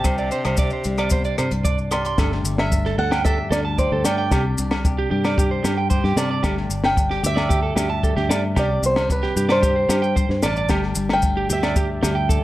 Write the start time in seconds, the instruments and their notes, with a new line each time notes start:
Already playing: tenor saxophone C3, clean electric guitar D3 G4, steel-string acoustic guitar G4
0.04 fingered electric bass C2, clean electric guitar C3 D4 C5, kick, cross-stick, closed hi-hat, low agogo, maracas
0.18 clean electric guitar D5, maracas
0.31 clean electric guitar D4 C5, closed hi-hat, maracas
0.45 fingered electric bass C2, clean electric guitar C5, cross-stick, closed hi-hat, low agogo, maracas
0.57 clean electric guitar D4 D5, kick, closed hi-hat, maracas
0.70 clean electric guitar C5, maracas
0.84 fingered electric bass C2, clean electric guitar G3, closed hi-hat, maracas
0.98 clean electric guitar D5, cross-stick, closed hi-hat, low agogo, maracas
1.10 clean electric guitar B3 C5, kick, closed hi-hat, maracas
1.25 clean electric guitar D4 D5, maracas
1.38 clean electric guitar G2 C5, fingered electric bass C3, cross-stick, closed hi-hat, low agogo, maracas
1.51 fingered electric bass C2, closed hi-hat, maracas
1.65 clean electric guitar D4 D5, kick, closed hi-hat, maracas
1.78 maracas
1.91 clean electric guitar G4 C6, steel-string acoustic guitar D5, cross-stick, closed hi-hat, low agogo, maracas
2.05 clean electric guitar C6, closed hi-hat, maracas
2.18 fingered electric bass G1, clean electric guitar G2 A3 D4 G4 A4, kick, snare, low agogo, maracas
2.32 snare
2.44 fingered electric bass G1, clean electric guitar A3, maracas
2.58 steel-string acoustic guitar E5, snare, low agogo
2.72 clean electric guitar D4, kick, maracas
2.85 clean electric guitar A4, snare
2.98 fingered electric bass D2, clean electric guitar D3 A4, steel-string acoustic guitar F#5
3.11 clean electric guitar G5, snare, low agogo, maracas
3.25 clean electric guitar G4 A4, steel-string acoustic guitar E5, kick, maracas
3.38 muted clean electric guitar stroke
3.51 fingered electric bass D2, clean electric guitar G2 D4 A4, steel-string acoustic guitar D5, snare, low agogo, maracas
3.65 clean electric guitar A5
3.78 clean electric guitar G4 D5, steel-string acoustic guitar C5, kick, maracas
3.92 fingered electric bass D2, clean electric guitar A4
4.05 fingered electric bass G2, clean electric guitar A3 G5, steel-string acoustic guitar D5, snare, low agogo, maracas
4.18 clean electric guitar G5
4.31 fingered electric bass C2, clean electric guitar C3 D4 G4, kick, snare, low agogo, maracas
4.58 fingered electric bass C2, clean electric guitar D4, maracas
4.71 snare, low agogo
4.85 clean electric guitar G4, kick, maracas
4.98 clean electric guitar G4
5.11 fingered electric bass G2, clean electric guitar G3 G4
5.25 clean electric guitar D5, snare, low agogo, maracas
5.38 clean electric guitar G4, kick, maracas
5.51 clean electric guitar C5
5.64 clean electric guitar G2 G4, fingered electric bass G2, snare, low agogo, maracas
5.78 clean electric guitar G5
5.90 clean electric guitar G4 C5, kick, maracas
6.04 fingered electric bass G2, clean electric guitar G4, snare
6.16 fingered electric bass C3, clean electric guitar D4 D5, steel-string acoustic guitar A5, snare, low agogo, maracas
6.31 clean electric guitar D5
6.43 fingered electric bass G1, clean electric guitar G2 A3 D4 G4, kick, snare, low agogo, maracas
6.57 snare
6.69 fingered electric bass G1, muted clean electric guitar stroke, maracas
6.84 steel-string acoustic guitar G5, snare, low agogo
6.97 clean electric guitar D4, kick, maracas
7.10 clean electric guitar G4, snare
7.23 fingered electric bass D2, clean electric guitar D3 G4, steel-string acoustic guitar E5, maracas
7.36 clean electric guitar D5, snare, low agogo, maracas
7.49 clean electric guitar G4, kick, maracas
7.63 clean electric guitar A4
7.76 fingered electric bass D2, clean electric guitar G2 D4 G4, snare, low agogo, maracas
7.90 clean electric guitar A5
8.03 clean electric guitar G4 A4, kick, maracas
8.16 fingered electric bass D2, clean electric guitar G4, snare
8.29 fingered electric bass G2, clean electric guitar A3 D5, snare, low agogo, maracas
8.56 fingered electric bass C2, clean electric guitar C3 D4 G4, steel-string acoustic guitar D5, kick, snare, low agogo, maracas
8.82 fingered electric bass C2, clean electric guitar B3, steel-string acoustic guitar C5, maracas
8.96 clean electric guitar D4, snare, low agogo, maracas
9.10 clean electric guitar G4, steel-string acoustic guitar B4, kick, maracas
9.23 clean electric guitar G4, snare
9.36 fingered electric bass G2, clean electric guitar G3 G4, maracas
9.49 steel-string acoustic guitar C5, clean electric guitar D5, snare, low agogo, maracas
9.62 clean electric guitar G4, kick, maracas
9.76 clean electric guitar C5
9.89 fingered electric bass G2, clean electric guitar G2 G4, snare, low agogo, maracas
10.02 clean electric guitar G5, maracas
10.16 clean electric guitar C5, muted clean electric guitar stroke, kick, maracas
10.29 fingered electric bass G2, snare
10.43 fingered electric bass A1, clean electric guitar D4 D5, steel-string acoustic guitar A5, snare, low agogo, maracas
10.56 clean electric guitar D5, maracas
10.69 fingered electric bass G1, clean electric guitar G2 A3 D4 G4, kick, snare, low agogo, maracas
10.83 snare
10.95 fingered electric bass G1, clean electric guitar G3, maracas
11.09 clean electric guitar A3, steel-string acoustic guitar G5, snare, low agogo
11.22 clean electric guitar D4, kick, maracas
11.37 clean electric guitar G4
11.50 fingered electric bass D2, clean electric guitar D3 G4, steel-string acoustic guitar E5, maracas
11.63 clean electric guitar D5, snare, low agogo, maracas
11.76 clean electric guitar G4, kick, maracas
12.03 fingered electric bass D2, clean electric guitar G2 D4 G4, snare, low agogo, maracas
12.15 clean electric guitar G5
12.29 clean electric guitar G4 A4, kick, maracas